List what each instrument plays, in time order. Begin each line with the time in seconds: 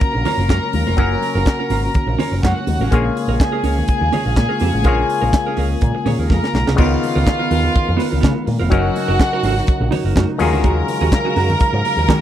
Already playing: tonewheel organ C#3 F#3 A#3 C#4, clav F#3 C#4 F4 A#4, string section A#4 A#5
0.00 muted clean electric guitar stroke, kick, closed hi-hat
0.13 picked electric bass A#1, muted clean electric guitar stroke
0.25 clean electric guitar C#4 F4 C#5, open hi-hat, muted conga, low conga
0.38 picked electric bass F#1, clean electric guitar C#4 F4 A#4
0.49 picked electric bass F#2, clean electric guitar C#4 F4 A#4, kick, snare, clap, closed hi-hat, high conga
0.64 muted clean electric guitar stroke
0.73 picked electric bass D#2, muted clean electric guitar stroke, open hi-hat, high conga
0.87 picked electric bass F1, clean electric guitar C#4 F4 A#4, high conga
0.97 picked electric bass F#1, clav F#3 C#4 F#4 A#4, clean electric guitar C#4 F4 A#4, kick, closed hi-hat, muted conga
1.12 muted clean electric guitar stroke
1.22 muted clean electric guitar stroke, open hi-hat, muted conga
1.35 picked electric bass F#1, clean electric guitar C#4 F4 A#4
1.45 muted clean electric guitar stroke, kick, snare, clap, closed hi-hat, high conga
1.59 clean electric guitar C#4 F4 A#4
1.70 picked electric bass G#1, clean electric guitar C#4 F4 A#4, open hi-hat
1.85 muted clean electric guitar stroke
1.94 muted clean electric guitar stroke, kick, closed hi-hat, low conga
2.07 picked electric bass A#1, muted clean electric guitar stroke
2.19 clean electric guitar C#4 F4 C#5, open hi-hat, muted conga, low conga
2.32 picked electric bass F#1, clean electric guitar C#4 F4 A#4
2.43 picked electric bass F#2, clean electric guitar C#4 F4 A#4, string section F#4 F#5, kick, snare, clap, closed hi-hat, high conga
2.57 muted clean electric guitar stroke
2.67 picked electric bass D#2, muted clean electric guitar stroke, open hi-hat, high conga
2.79 picked electric bass A1, clean electric guitar C#4 F4 A#4, high conga
2.91 picked electric bass A#1, tonewheel organ G#3 A#3 F4, clav A#3 F4 G#4 C#5, clean electric guitar C#4 G#4 A#4, string section G#4 G#5, kick, closed hi-hat, muted conga
3.05 muted clean electric guitar stroke
3.16 muted clean electric guitar stroke, open hi-hat
3.28 picked electric bass A#1, clean electric guitar C#4 G#4 A#4
3.40 muted clean electric guitar stroke, kick, snare, clap, closed hi-hat, high conga
3.52 clean electric guitar C#4 G#4 A#4
3.63 picked electric bass C#2, clean electric guitar C#4 G#4 A#4, open hi-hat
3.77 muted clean electric guitar stroke, low conga
3.88 muted clean electric guitar stroke, kick, closed hi-hat
4.01 picked electric bass D#2, muted clean electric guitar stroke
4.12 clean electric guitar C#4 G#4 C#5, open hi-hat, muted conga, low conga
4.25 picked electric bass A#1, clean electric guitar C#4 A#4
4.36 picked electric bass A#2, muted clean electric guitar stroke, kick, snare, clap, closed hi-hat, high conga
4.49 clean electric guitar C#4 G#4 A#4
4.60 picked electric bass F2, clean electric guitar C#4 G#4 A#4, open hi-hat, high conga
4.74 picked electric bass A1, muted clean electric guitar stroke, high conga
4.84 picked electric bass A#1, clav A#3 F4 G#4 C#5, clean electric guitar C#4 G#4 A#4, kick, closed hi-hat, muted conga
4.98 muted clean electric guitar stroke
5.09 muted clean electric guitar stroke, open hi-hat
5.22 picked electric bass A#1, clean electric guitar C#4 G#4 A#4
5.33 muted clean electric guitar stroke, kick, snare, clap, closed hi-hat, high conga
5.46 clean electric guitar C#4 G#4 A#4
5.57 picked electric bass C#2, clean electric guitar C#4 G#4 A#4, open hi-hat
5.71 muted clean electric guitar stroke
5.81 picked electric bass A#2, muted clean electric guitar stroke, kick, closed hi-hat, low conga
5.95 muted clean electric guitar stroke
6.06 picked electric bass A#2, clean electric guitar C#4 G#4 C#5, open hi-hat, muted conga, low conga
6.19 picked electric bass D#2, clean electric guitar C#4 G#4 A#4
6.30 picked electric bass F2, clean electric guitar C#4 G#4 A#4, string section A#4 A#5, kick, snare, high conga
6.44 muted clean electric guitar stroke, snare
6.54 picked electric bass B1, muted clean electric guitar stroke, snare, high conga
6.67 picked electric bass C2, clean electric guitar C#4 G#4 A#4, snare
6.76 picked electric bass C#2, clav C#3 B3 D#4 F4 A#4, tonewheel organ D#3 B3 F4 A#4, clean electric guitar B3, string section F4 F5, kick, crash, muted conga
6.80 clean electric guitar F4 A#4
6.93 muted clean electric guitar stroke
7.03 muted clean electric guitar stroke, open hi-hat, muted conga
7.16 picked electric bass C#2, clean electric guitar B3 F4 A#4
7.26 muted clean electric guitar stroke, kick, snare, clap, closed hi-hat, high conga
7.39 clean electric guitar B3 F4 A#4
7.51 picked electric bass D#2, clean electric guitar B3 F4 A#4, open hi-hat
7.64 muted clean electric guitar stroke, low conga
7.74 muted clean electric guitar stroke, kick, closed hi-hat
7.88 picked electric bass F2, muted clean electric guitar stroke
7.97 clean electric guitar B3 F4 B4, open hi-hat, muted conga
8.11 picked electric bass C#2, clean electric guitar B3 F4 A#4
8.20 picked electric bass C#3, clean electric guitar B3 F4 A#4, kick
8.24 snare, clap, closed hi-hat, high conga
8.35 muted clean electric guitar stroke
8.45 picked electric bass A#2, muted clean electric guitar stroke, open hi-hat, high conga
8.59 picked electric bass F1, clean electric guitar B3 F4 A#4
8.70 picked electric bass F#1, tonewheel organ C#3 F#3 D#4, clav F#3 C#4 D#4 A#4, clean electric guitar D#4 F#4 A#4, string section F#4 F#5, kick, closed hi-hat, muted conga
8.84 muted clean electric guitar stroke
8.96 muted clean electric guitar stroke, open hi-hat, muted conga
9.08 picked electric bass F#1, clean electric guitar D#4 F#4 A#4
9.20 kick, snare, clap, closed hi-hat, high conga
9.33 clean electric guitar D#4 F#4 A#4
9.43 picked electric bass G#1, clean electric guitar D#4 F#4 A#4, open hi-hat
9.57 muted clean electric guitar stroke, snare
9.67 muted clean electric guitar stroke, kick, closed hi-hat
9.81 picked electric bass A#1, muted clean electric guitar stroke
9.91 clean electric guitar D#4 F#4 C#5, open hi-hat, muted conga, low conga
10.04 picked electric bass F#1, clean electric guitar D#4 F#4 A#4
10.15 picked electric bass F#2, clean electric guitar D#4 F#4 A#4, kick, snare, clap, closed hi-hat, high conga
10.29 muted clean electric guitar stroke
10.38 picked electric bass D#2, clav D#3 C#4 F4 F#4 G#4, tonewheel organ F#3 G#3 F5, string section A#4 A#5, muted clean electric guitar stroke, open hi-hat, high conga
10.52 picked electric bass D2, clean electric guitar C#4 F#4 G#4
10.64 picked electric bass D#2, clean electric guitar C#4 F#4 G#4, kick, closed hi-hat, muted conga
10.77 muted clean electric guitar stroke
10.88 muted clean electric guitar stroke, open hi-hat, muted conga
11.01 picked electric bass D#2, clean electric guitar C#4 F#4 G#4
11.12 muted clean electric guitar stroke, kick, snare, clap, closed hi-hat, high conga
11.25 clean electric guitar C#4 F#4 G#4
11.36 picked electric bass F#2, clean electric guitar C#4 F#4 G#4, open hi-hat
11.50 muted clean electric guitar stroke, low conga
11.60 muted clean electric guitar stroke, kick, closed hi-hat
11.73 picked electric bass G#2, muted clean electric guitar stroke
11.85 open hi-hat, muted conga
11.97 picked electric bass D#2, muted clean electric guitar stroke
12.08 picked electric bass D#3, clean electric guitar C#4 F#4 G#4, kick, snare, clap, closed hi-hat, high conga